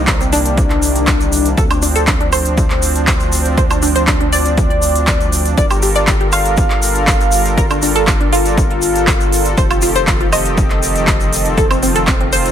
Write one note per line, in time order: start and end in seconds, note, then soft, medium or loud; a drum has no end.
0.00 1.55 C2 medium
0.00 1.54 C3 medium
0.00 1.54 D#3 medium
0.00 1.54 G3 medium
0.00 1.54 A#3 medium
0.00 9.54 D4 medium
0.07 0.15 C4 medium
0.07 kick loud
0.07 clap loud
0.07 closed hi-hat medium
0.07 shaker medium
0.21 0.28 C4 medium
0.21 closed hi-hat soft
0.21 shaker soft
0.32 1.48 D4 loud
0.32 open hi-hat loud
0.32 shaker medium
0.46 closed hi-hat medium
0.46 shaker soft
0.58 kick loud
0.58 closed hi-hat medium
0.58 shaker soft
0.70 clap soft
0.70 closed hi-hat soft
0.83 open hi-hat loud
0.83 shaker medium
0.96 closed hi-hat medium
0.96 shaker soft
1.07 kick loud
1.07 clap loud
1.07 closed hi-hat medium
1.07 shaker medium
1.21 closed hi-hat soft
1.21 shaker soft
1.33 open hi-hat loud
1.33 shaker medium
1.46 closed hi-hat medium
1.46 shaker soft
1.58 5.55 D2 medium
1.58 5.54 F3 medium
1.58 5.54 C4 medium
1.58 1.65 A4 loud
1.58 kick loud
1.58 closed hi-hat medium
1.58 shaker medium
1.71 1.78 D4 medium
1.71 closed hi-hat soft
1.71 high woodblock medium
1.71 shaker soft
1.82 1.90 D4 medium
1.82 open hi-hat loud
1.82 shaker medium
1.96 2.03 A4 medium
1.96 closed hi-hat medium
1.96 shaker soft
2.07 2.15 D4 medium
2.07 kick loud
2.07 clap loud
2.07 closed hi-hat medium
2.07 shaker medium
2.21 2.28 D4 medium
2.21 closed hi-hat soft
2.33 3.48 C5 loud
2.33 open hi-hat loud
2.33 high woodblock medium
2.33 shaker loud
2.45 closed hi-hat medium
2.45 shaker soft
2.58 kick loud
2.58 closed hi-hat medium
2.58 shaker medium
2.70 clap soft
2.70 closed hi-hat soft
2.82 open hi-hat loud
2.82 shaker loud
2.96 closed hi-hat medium
2.96 shaker soft
3.07 kick loud
3.07 clap loud
3.07 closed hi-hat medium
3.07 shaker medium
3.20 closed hi-hat soft
3.20 shaker soft
3.32 open hi-hat loud
3.32 shaker loud
3.45 closed hi-hat medium
3.45 shaker soft
3.58 3.65 C5 loud
3.58 kick loud
3.58 closed hi-hat medium
3.58 shaker medium
3.70 3.78 D4 medium
3.70 closed hi-hat soft
3.70 high woodblock medium
3.70 shaker soft
3.82 3.90 D4 medium
3.82 open hi-hat loud
3.82 shaker loud
3.96 4.03 C5 loud
3.96 closed hi-hat medium
3.96 shaker soft
4.07 4.15 D4 medium
4.07 kick loud
4.07 clap loud
4.07 closed hi-hat medium
4.07 shaker medium
4.21 4.28 D4 medium
4.21 closed hi-hat soft
4.32 5.48 D5 loud
4.32 open hi-hat loud
4.32 shaker loud
4.45 closed hi-hat medium
4.45 shaker soft
4.57 kick loud
4.57 closed hi-hat medium
4.57 shaker medium
4.71 closed hi-hat soft
4.82 open hi-hat loud
4.82 shaker loud
4.95 closed hi-hat medium
4.95 shaker soft
5.07 kick loud
5.07 clap loud
5.07 closed hi-hat medium
5.07 shaker medium
5.21 closed hi-hat soft
5.21 shaker soft
5.32 open hi-hat loud
5.32 shaker loud
5.46 closed hi-hat medium
5.46 shaker soft
5.58 9.55 G1 medium
5.58 9.54 G3 medium
5.58 9.54 F4 medium
5.58 12.52 A4 medium
5.58 9.54 A#4 medium
5.58 5.65 D5 loud
5.58 kick loud
5.58 closed hi-hat medium
5.58 shaker medium
5.71 5.78 G4 medium
5.71 closed hi-hat soft
5.71 high woodblock medium
5.71 shaker soft
5.82 5.90 G4 medium
5.82 open hi-hat loud
5.82 shaker loud
5.96 6.03 D5 loud
5.96 closed hi-hat medium
5.96 shaker soft
6.07 6.15 G4 medium
6.07 kick loud
6.07 clap loud
6.07 closed hi-hat medium
6.07 shaker medium
6.21 6.28 G4 medium
6.21 closed hi-hat soft
6.32 7.48 F5 loud
6.32 open hi-hat loud
6.32 high woodblock medium
6.32 shaker medium
6.46 closed hi-hat medium
6.46 shaker soft
6.57 kick loud
6.57 closed hi-hat medium
6.57 shaker medium
6.70 clap soft
6.70 closed hi-hat soft
6.82 open hi-hat loud
6.82 shaker loud
6.95 closed hi-hat medium
6.95 shaker soft
7.07 kick loud
7.07 clap loud
7.07 closed hi-hat medium
7.07 shaker medium
7.21 closed hi-hat soft
7.21 shaker soft
7.32 open hi-hat loud
7.32 shaker loud
7.46 closed hi-hat medium
7.46 shaker soft
7.58 7.65 A#4 loud
7.58 kick loud
7.58 closed hi-hat medium
7.58 shaker medium
7.70 7.78 D4 medium
7.70 closed hi-hat soft
7.70 high woodblock medium
7.70 shaker soft
7.82 7.90 D4 medium
7.82 open hi-hat loud
7.82 shaker loud
7.96 8.03 A4 loud
7.96 closed hi-hat medium
7.96 shaker soft
8.07 8.15 D4 medium
8.07 kick loud
8.07 clap loud
8.07 closed hi-hat medium
8.07 shaker medium
8.21 8.28 D4 medium
8.21 closed hi-hat soft
8.33 9.48 F4 loud
8.33 open hi-hat loud
8.33 shaker medium
8.45 closed hi-hat medium
8.45 shaker soft
8.58 kick loud
8.58 closed hi-hat medium
8.58 shaker medium
8.71 closed hi-hat soft
8.82 open hi-hat loud
8.82 shaker loud
8.96 closed hi-hat medium
8.96 shaker soft
9.07 kick loud
9.07 clap loud
9.07 closed hi-hat medium
9.07 shaker medium
9.20 closed hi-hat soft
9.20 shaker soft
9.32 open hi-hat loud
9.32 shaker loud
9.46 closed hi-hat soft
9.46 shaker soft
9.58 12.52 F1 medium
9.58 12.52 D#3 medium
9.58 12.52 F3 medium
9.58 12.52 C4 medium
9.58 11.56 G4 medium
9.58 9.65 C5 loud
9.58 kick loud
9.58 closed hi-hat medium
9.58 shaker soft
9.71 9.78 F4 medium
9.71 closed hi-hat soft
9.71 high woodblock medium
9.71 shaker soft
9.82 9.90 F4 medium
9.82 open hi-hat loud
9.82 shaker loud
9.96 10.03 C5 loud
9.96 closed hi-hat medium
9.96 shaker soft
10.07 10.15 F4 medium
10.07 kick loud
10.07 clap loud
10.07 closed hi-hat medium
10.07 shaker medium
10.21 10.28 F4 medium
10.21 closed hi-hat soft
10.32 11.48 D#5 medium
10.32 open hi-hat loud
10.32 high woodblock medium
10.32 shaker medium
10.46 closed hi-hat medium
10.46 shaker soft
10.57 kick loud
10.57 closed hi-hat medium
10.57 shaker soft
10.70 clap soft
10.70 closed hi-hat soft
10.83 open hi-hat loud
10.83 shaker medium
10.96 closed hi-hat medium
10.96 shaker soft
11.07 kick loud
11.07 clap loud
11.07 closed hi-hat medium
11.07 shaker medium
11.20 closed hi-hat soft
11.20 shaker soft
11.33 open hi-hat loud
11.33 shaker loud
11.45 closed hi-hat medium
11.45 shaker soft
11.58 12.52 F4 medium
11.58 11.65 A4 loud
11.58 kick loud
11.58 closed hi-hat medium
11.58 shaker soft
11.71 11.78 C4 medium
11.71 closed hi-hat soft
11.71 high woodblock medium
11.71 shaker soft
11.83 11.90 C4 medium
11.83 open hi-hat loud
11.83 shaker medium
11.95 12.03 A4 loud
11.95 closed hi-hat medium
11.95 shaker soft
12.07 12.15 C4 medium
12.07 kick loud
12.07 clap loud
12.07 closed hi-hat medium
12.07 shaker soft
12.21 12.28 C4 medium
12.21 closed hi-hat soft
12.33 12.52 C5 loud
12.33 open hi-hat loud
12.33 shaker medium
12.46 closed hi-hat medium
12.46 shaker soft